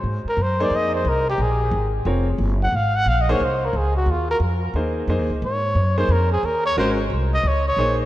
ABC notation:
X:1
M:4/4
L:1/8
Q:"Swing" 1/4=178
K:Ebdor
V:1 name="Trumpet"
z B c =d e c B =G | A3 z4 g | f g (3f e d c B A G | F B z6 |
d3 c B A B d | c z2 e d d2 z |]
V:2 name="Upright piano"
z3 [B,EAc]3 z2 | z4 [CFBd] z3 | z3 [B,EAc] z4 | z4 [B,EAc]2 [B,EAc] z |
z3 [B,EAc] z4 | [A,DGB] z4 z [B,EAc]2 |]
V:3 name="Upright bass" clef=bass
A,, z G,,2 F,,2 C,,2 | B,,,2 A,,,2 F,,,2 G,,,2 | A,,,2 B,,,2 C,,2 D,,2 | E,,2 F,,2 E,,2 (3F,, E,, D,, |
A,,2 G,,2 F,,2 E,,2 | A,,,2 C,,2 D,,2 B,,,2 |]